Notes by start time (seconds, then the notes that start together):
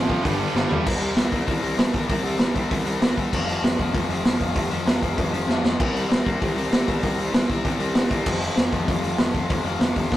Already playing: A1
0.07 F2 C3 F3, kick
0.23 G1 G2 D3 G3, kick, open hi-hat
0.39 G2 D3 G3
0.53 G1 G2 D3 G3, snare
0.68 D2 G2 D3 G3, floor tom
0.85 C2 C3 G3 C4, kick, crash
1.01 C3 G3 C4, open hi-hat
1.16 C2 C3 G3 C4, snare, open hi-hat
1.31 C2 C3 G3 C4, kick, open hi-hat
1.46 C2 C3 G3 C4, kick, open hi-hat
1.61 C2 C3 G3 C4, open hi-hat
1.76 C2 C3 G3 C4, snare, open hi-hat
1.92 C2 C3 G3 C4, kick, open hi-hat
2.07 C2 C3 G3 C4, kick, open hi-hat
2.23 C2 C3 G3 C4, open hi-hat
2.38 C2 C3 G3 C4, snare, open hi-hat
2.54 C2 C3 G3 C4, kick, open hi-hat
2.69 C2 C3 G3 C4, kick, open hi-hat
2.85 C2 C3 G3 C4, open hi-hat
3.00 C2 C3 G3 C4, snare, open hi-hat
3.16 C2 C3 G3 C4, kick, open hi-hat
3.32 F1 F2 C3 F3, kick, crash
3.47 F2 C3 F3, open hi-hat
3.62 F1 F2 C3 F3, snare, open hi-hat
3.77 F1 F2 C3 F3, kick, open hi-hat
3.93 F1 F2 C3 F3, kick, open hi-hat
4.08 F1 F2 C3 F3, open hi-hat
4.24 F1 F2 C3 F3, snare, open hi-hat
4.39 F1 F2 C3 F3, kick, open hi-hat
4.54 F1 F2 C3 F3, kick, open hi-hat
4.70 F1 F2 C3 F3, open hi-hat
4.86 F1 F2 C3 F3, snare, open hi-hat
5.01 F1 F2 C3 F3, kick, open hi-hat
5.16 F1 F2 C3 F3, kick, open hi-hat
5.32 F1 F2 C3 F3, open hi-hat
5.47 F1 F2 C3 F3, snare
5.62 F1 F2 C3 F3, snare
5.78 C2 C3 G3 C4, kick, crash
5.94 C3 G3 C4, open hi-hat
6.09 C2 C3 G3 C4, snare, open hi-hat
6.24 C2 C3 G3 C4, kick, open hi-hat
6.40 C2 C3 G3 C4, kick, open hi-hat
6.55 C2 C3 G3 C4, open hi-hat
6.71 C2 C3 G3 C4, snare, open hi-hat
6.86 C2 C3 G3 C4, kick, open hi-hat
7.03 C2 C3 G3 C4, kick, open hi-hat
7.18 C2 C3 G3 C4, open hi-hat
7.32 C2 C3 G3 C4, snare, open hi-hat
7.48 C2 C3 G3 C4, kick, open hi-hat
7.64 C2 C3 G3 C4, kick, open hi-hat
7.79 C2 C3 G3 C4, open hi-hat
7.94 C2 C3 G3 C4, snare, open hi-hat
8.10 C2 C3 G3 C4, kick, open hi-hat
8.24 F1 F2 C3 F3, kick, crash
8.40 F2 C3 F3, open hi-hat
8.56 F1 F2 C3 F3, snare, open hi-hat
8.71 F1 F2 C3 F3, kick, open hi-hat
8.87 F1 F2 C3 F3, kick, open hi-hat
9.02 F1 F2 C3 F3, open hi-hat
9.18 F1 F2 C3 F3, snare, open hi-hat
9.32 F1 F2 C3 F3, kick, open hi-hat
9.48 F1 F2 C3 F3, kick, open hi-hat
9.63 F1 F2 C3 F3, open hi-hat
9.79 F1 F2 C3 F3, snare, open hi-hat
9.95 F1 F2 C3 F3, kick, open hi-hat
10.10 F1 F2 C3 F3, kick, snare